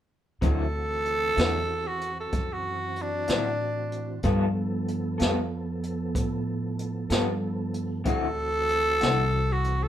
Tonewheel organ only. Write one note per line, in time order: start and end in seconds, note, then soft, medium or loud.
0.41 4.20 E3 medium
0.41 4.20 C4 medium
0.41 4.21 F#4 medium
4.24 8.02 F3 medium
4.24 8.02 B3 medium
4.24 8.02 A4 medium
8.06 9.88 E3 medium
8.06 9.88 C4 medium
8.06 9.88 F#4 medium